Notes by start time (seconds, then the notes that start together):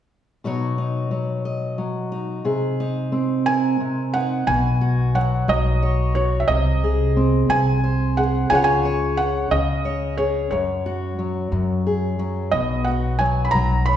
0.44 B2 F#3 D#4 F#4 C#5
0.78 D#4
1.11 F#3
1.45 D#5
1.78 F#3
2.12 D#4
2.45 C3 G#4
2.80 D#4
3.12 C4
3.46 A#4 G#5
3.80 C3
4.14 D#4 F#5
4.47 B1 B2 G#5
4.81 F#4
5.15 F#3 F#5
5.48 B1 F#3 D#5
5.83 C#5
6.15 F#4 C#5
6.40 E5
6.48 C2 C3 D#5
6.84 G#4
7.16 C4
7.49 C2 C3 G#5
7.84 C5
8.17 G#4 F#5
8.50 C#2 C#3 F4 G#4 C#5 G#5
8.55 F#5
8.64 G#5
8.85 C#5
9.17 F#5
9.51 C#2 C#3 D#5
9.85 C#5
10.18 G#4 C#5
10.51 F#2 C#5
10.86 F#4
11.19 F#3
11.52 F#2
11.87 G#4
12.19 F#3
12.51 B1 B2 D#5
12.84 F#4 F#5
13.19 F#3 G#5
13.45 B5
13.51 B1 F#3 A#5
13.86 C#5 B5